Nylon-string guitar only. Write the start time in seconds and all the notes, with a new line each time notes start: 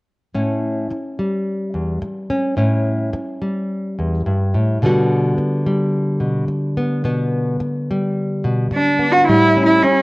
0.34 A2 C#4
0.91 muted nylon-string guitar stroke
1.19 G3
1.74 E2
2.02 muted nylon-string guitar stroke
2.30 C#4
2.57 A2 C#4
3.13 muted nylon-string guitar stroke
3.42 G3
3.99 E2
4.26 G2
4.54 A2
4.82 B2 D3 G3 B3 F#4
5.38 muted nylon-string guitar stroke
5.66 G3
6.20 B2
6.48 muted nylon-string guitar stroke
6.77 B3
7.04 B2 B3
7.60 muted nylon-string guitar stroke
7.91 G3
8.44 B2
8.71 muted nylon-string guitar stroke
8.99 B3
9.29 A2 G3
9.57 C#4
9.84 muted nylon-string guitar stroke